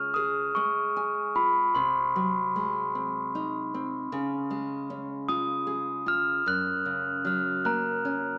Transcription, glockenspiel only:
0.00 0.17 F6 medium
0.14 0.56 D#6 medium
0.55 1.38 C#6 medium
1.36 1.76 B5 medium
1.75 3.68 C6 medium
5.29 6.08 D#6 medium
6.08 6.47 F6 medium
6.48 7.28 F#6 medium
7.27 7.67 F6 medium
7.65 8.38 A#5 medium
7.65 8.38 F#6 medium

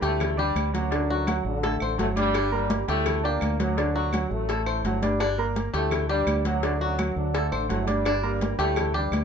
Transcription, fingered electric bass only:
0.02 0.52 D2 loud
0.55 1.39 D2 medium
1.45 1.78 A1 loud
1.81 1.98 A1 medium
1.98 2.82 G1 loud
2.88 3.38 D2 loud
3.42 4.25 D2 loud
4.31 4.81 A1 loud
4.84 5.68 G1 medium
5.74 6.24 D2 medium
6.27 7.10 D2 loud
7.16 7.50 D2 loud
7.52 7.69 A1 medium
7.70 8.53 G1 loud
8.58 9.08 D2 loud
9.12 9.24 D2 medium

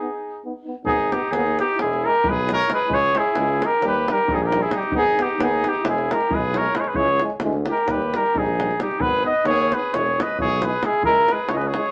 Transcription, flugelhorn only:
0.00 0.46 G#4 loud
0.86 1.14 G#4 loud
1.12 1.33 G4 loud
1.31 1.58 G#4 medium
1.60 1.79 G4 loud
1.81 2.07 G#4 loud
2.05 2.30 A#4 loud
2.28 2.51 B4 loud
2.54 2.70 C#5 medium
2.73 2.96 B4 loud
2.94 3.20 C#5 loud
3.19 3.67 G#4 loud
3.66 3.85 A#4 loud
3.88 4.14 B4 loud
4.13 4.36 A#4 loud
4.35 4.48 G#4 medium
4.47 4.64 A#4 medium
4.62 4.79 G#4 medium
4.78 4.95 G4 medium
4.97 5.23 G#4 loud
5.22 5.45 G4 loud
5.44 5.70 G#4 loud
5.68 5.88 G4 loud
5.89 6.14 G#4 medium
6.12 6.36 A#4 medium
6.35 6.58 B4 medium
6.56 6.77 C#5 medium
6.75 6.82 B4 loud
6.81 6.90 C#5 medium
6.88 6.97 B4 medium
6.96 7.22 C#5 loud
7.72 7.92 A#4 medium
7.91 8.18 B4 loud
8.17 8.39 A#4 loud
8.38 8.81 G#4 medium
8.82 9.02 G4 loud
9.01 9.26 B4 loud
9.26 9.45 D#5 loud
9.47 9.75 C#5 loud
9.74 9.96 B4 loud
9.94 10.23 C#5 medium
10.22 10.40 D#5 loud
10.41 10.65 C#5 medium
10.64 10.86 B4 loud
10.85 11.04 G#4 loud
11.05 11.34 A#4 loud
11.32 11.51 B4 loud
11.49 11.54 C#5 medium
11.49 11.66 D#5 medium
11.65 11.91 C#5 medium

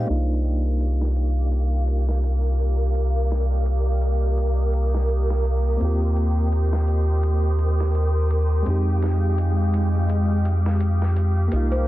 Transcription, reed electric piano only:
0.00 0.11 G#3 loud
0.00 0.10 C4 loud
0.00 0.10 D#4 loud
0.00 0.11 G4 loud
0.05 5.75 A#3 medium
0.05 5.76 D4 medium
0.10 5.77 D#4 medium
0.10 5.79 F4 medium
5.77 8.61 A#3 medium
5.77 8.62 C4 medium
5.82 8.63 F4 medium
5.82 8.65 G4 medium
8.62 11.46 G#3 medium
8.62 11.48 C4 medium
8.68 11.49 D#4 medium
8.68 11.50 G4 medium
11.48 11.88 A#3 medium
11.53 11.88 D#4 medium
11.53 11.88 F4 medium

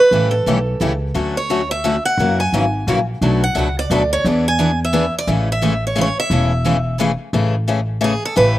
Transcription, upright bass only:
0.11 0.39 A1 medium
0.47 0.76 B1 medium
0.81 1.10 C#2 medium
1.15 1.97 D2 medium
2.18 2.45 F#2 medium
2.52 2.82 G#1 medium
2.87 3.16 A#1 medium
3.21 3.49 B1 medium
3.55 3.85 C#2 medium
3.90 4.19 D2 medium
4.24 5.07 E2 medium
5.27 6.10 A1 medium
6.30 7.13 E1 medium
7.33 8.16 A1 medium
8.37 8.59 A1 medium

